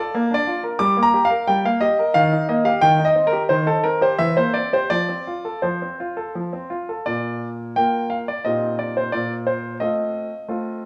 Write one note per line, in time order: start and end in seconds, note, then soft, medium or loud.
0.00 0.15 A4 medium
0.00 0.33 D5 loud
0.14 0.31 A#3 medium
0.30 0.49 D4 medium
0.30 0.62 D5 loud
0.47 0.65 F4 medium
0.63 0.81 A#4 medium
0.79 0.97 G3 medium
0.79 1.03 D6 loud
0.97 1.15 A#3 medium
1.03 1.26 A#5 loud
1.14 1.32 G4 medium
1.25 1.48 F5 loud
1.30 1.49 A#4 medium
1.48 1.65 G3 medium
1.48 1.65 G5 loud
1.65 1.83 A#3 medium
1.65 1.82 F5 loud
1.80 1.99 G4 medium
1.80 2.15 D#5 loud
1.99 2.15 A#4 medium
2.14 2.31 D#3 medium
2.14 2.45 F5 loud
2.32 2.50 D#4 medium
2.49 2.67 A#3 medium
2.49 2.66 D#5 medium
2.65 2.82 G4 medium
2.65 2.82 F5 loud
2.81 2.99 D#3 medium
2.81 3.04 G5 loud
2.99 3.17 D#4 medium
3.05 3.25 D#5 loud
3.15 3.34 C4 medium
3.27 3.41 A#4 loud
3.33 3.51 G4 medium
3.49 3.67 D#3 medium
3.49 3.67 C5 medium
3.66 3.85 D#4 medium
3.66 3.84 A4 medium
3.84 4.03 C4 medium
3.84 4.01 A#4 medium
4.01 4.19 G4 medium
4.01 4.19 C5 medium
4.19 4.36 E3 medium
4.19 4.37 E5 loud
4.37 4.55 A#3 medium
4.37 4.55 C5 loud
4.54 4.73 C4 medium
4.54 4.72 D5 medium
4.73 4.91 G4 medium
4.73 4.91 C5 medium
4.90 5.08 F3 medium
4.90 5.63 D5 loud
5.08 5.28 C4 medium
5.27 5.46 F4 medium
5.45 5.64 A4 medium
5.62 5.80 F3 medium
5.62 6.34 C5 medium
5.82 6.00 C4 medium
6.00 6.18 F4 medium
6.17 6.35 A4 medium
6.35 6.52 F3 medium
6.53 6.71 C4 medium
6.70 6.88 F4 medium
6.89 7.06 A4 medium
7.06 7.74 A#2 medium
7.06 7.47 D5 medium
7.76 8.25 A#3 medium
7.76 8.25 F4 soft
7.76 8.26 A#4 medium
7.76 8.10 G5 loud
8.10 8.27 F5 medium
8.28 8.44 D5 medium
8.45 9.10 A#2 medium
8.45 9.08 C4 medium
8.45 9.09 D#4 soft
8.45 9.09 G4 soft
8.45 8.75 D#5 medium
8.79 8.95 D5 medium
8.97 9.12 C5 medium
9.12 9.78 A#2 medium
9.12 9.32 D5 medium
9.46 9.77 C5 medium
9.80 10.29 A3 soft
9.80 10.29 C4 medium
9.80 10.29 F4 medium
9.80 10.86 D#5 medium
10.48 10.86 A3 soft
10.48 10.86 C4 soft
10.48 10.86 F4 medium